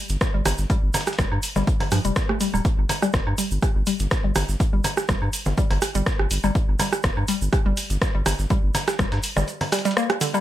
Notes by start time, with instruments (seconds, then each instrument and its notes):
0.09 sub bass G1, snare, closed hi-hat, shaker
0.21 kick, cross-stick, snare, closed hi-hat, shaker
0.34 sub bass G1, synth arpeggio sound G3
0.45 sub bass G1, cross-stick, closed hi-hat, open hi-hat, low conga, low woodblock, shaker
0.58 sub bass G1, snare, shaker
0.70 synth arpeggio sound G3, kick, closed hi-hat, shaker
0.83 sub bass G1
0.94 snare, closed hi-hat, open hi-hat, low conga, low woodblock, shaker
1.01 snare, closed hi-hat
1.07 cross-stick, snare, closed hi-hat, shaker
1.13 snare, closed hi-hat
1.18 sub bass G1, synth arpeggio sound G3, kick, cross-stick, snare, closed hi-hat, shaker
1.32 sub bass G2, low woodblock
1.43 closed hi-hat, open hi-hat, shaker
1.56 sub bass G1, synth arpeggio sound G3, snare, low conga, shaker
1.67 kick, closed hi-hat, shaker
1.80 closed hi-hat, open hi-hat, low conga, low woodblock
1.92 sub bass G2, synth arpeggio sound F3, cross-stick, closed hi-hat, open hi-hat, shaker
2.05 sub bass F1, synth arpeggio sound G3, closed hi-hat, shaker
2.16 kick, cross-stick, snare, closed hi-hat, shaker
2.29 synth arpeggio sound A3, cross-stick
2.41 synth arpeggio sound G3, closed hi-hat, open hi-hat, shaker
2.54 sub bass D1, synth arpeggio sound G3, low woodblock, shaker
2.65 kick, closed hi-hat, shaker
2.78 sub bass G1
2.89 closed hi-hat, open hi-hat, low conga, low woodblock, shaker
3.02 synth arpeggio sound G3, cross-stick, closed hi-hat, shaker
3.13 sub bass G1, kick, cross-stick, snare, closed hi-hat, shaker
3.27 sub bass G2, low woodblock
3.38 synth arpeggio sound G3, closed hi-hat, open hi-hat, shaker
3.51 sub bass G1, shaker
3.62 kick, cross-stick, closed hi-hat, shaker
3.75 sub bass G1
3.87 synth arpeggio sound G3, closed hi-hat, open hi-hat, shaker
3.99 sub bass G1, snare, closed hi-hat, shaker
4.11 kick, cross-stick, snare, closed hi-hat, shaker
4.24 sub bass G1, synth arpeggio sound G3
4.35 sub bass G1, cross-stick, closed hi-hat, open hi-hat, low conga, low woodblock, shaker
4.49 sub bass G1, snare, shaker
4.60 kick, closed hi-hat, shaker
4.73 sub bass G1, synth arpeggio sound G3
4.84 closed hi-hat, open hi-hat, low conga, low woodblock, shaker
4.97 cross-stick, snare, shaker
5.08 sub bass G1, synth arpeggio sound G3, kick, cross-stick, snare, closed hi-hat, shaker
5.22 sub bass G2, low woodblock
5.33 closed hi-hat, open hi-hat, shaker
5.45 sub bass G1, snare, low conga, shaker
5.58 synth arpeggio sound G3, kick, closed hi-hat, shaker
5.71 sub bass G1, closed hi-hat, open hi-hat, low conga, low woodblock
5.82 cross-stick, closed hi-hat, open hi-hat, shaker
5.95 sub bass G1, synth arpeggio sound G3, closed hi-hat, shaker
6.06 kick, cross-stick, snare, closed hi-hat, shaker
6.19 sub bass G1, cross-stick
6.31 sub bass G1, closed hi-hat, open hi-hat, shaker
6.43 sub bass G1, synth arpeggio sound G3, low woodblock, shaker
6.55 kick, closed hi-hat, shaker
6.68 sub bass G1
6.79 synth arpeggio sound G3, closed hi-hat, open hi-hat, low conga, low woodblock, shaker
6.93 cross-stick, closed hi-hat, shaker
7.03 sub bass G1, kick, cross-stick, snare, closed hi-hat, shaker
7.17 sub bass G2, low woodblock
7.28 synth arpeggio sound G3, closed hi-hat, open hi-hat, shaker
7.41 sub bass G1, shaker
7.53 kick, cross-stick, closed hi-hat, shaker
7.66 sub bass G1, synth arpeggio sound G3
7.77 closed hi-hat, open hi-hat, shaker
7.90 sub bass G1, snare, closed hi-hat, shaker
8.01 kick, cross-stick, snare, closed hi-hat, shaker
8.15 sub bass G1, synth arpeggio sound G3
8.26 sub bass G1, cross-stick, closed hi-hat, open hi-hat, low conga, low woodblock, shaker
8.39 sub bass G1, snare, shaker
8.50 synth arpeggio sound G3, kick, closed hi-hat, shaker
8.63 sub bass G1
8.75 snare, closed hi-hat, open hi-hat, low conga, low woodblock, shaker
8.88 cross-stick, snare, closed hi-hat, shaker
8.99 sub bass G1, synth arpeggio sound G3, kick, cross-stick, snare, closed hi-hat, shaker
9.12 sub bass G2, snare, closed hi-hat, low woodblock
9.23 closed hi-hat, open hi-hat, shaker
9.36 sub bass G1, synth arpeggio sound G3, cross-stick, snare, low conga, shaker
9.48 closed hi-hat, shaker
9.61 closed hi-hat, open hi-hat, low conga, low woodblock
9.72 synth arpeggio sound G3, cross-stick, snare, closed hi-hat, open hi-hat, shaker
9.79 snare, closed hi-hat
9.85 synth arpeggio sound G3, snare, closed hi-hat, shaker
9.91 snare, closed hi-hat
9.97 synth arpeggio sound A#3, cross-stick, shaker
10.10 cross-stick, closed hi-hat
10.21 synth arpeggio sound D3, closed hi-hat, open hi-hat, shaker
10.34 synth arpeggio sound G3, low woodblock, shaker